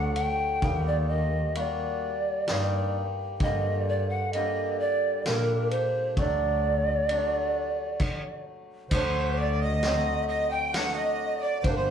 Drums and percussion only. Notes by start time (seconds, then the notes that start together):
0.16 ride
0.62 kick, ride
1.55 ride
2.48 snare, ride
3.40 kick, ride
4.33 ride
5.26 snare, ride
5.71 ride
6.17 kick, ride
7.09 ride
8.00 kick, crash
8.91 kick, crash
9.83 snare, ride
10.74 snare, ride
11.64 kick, ride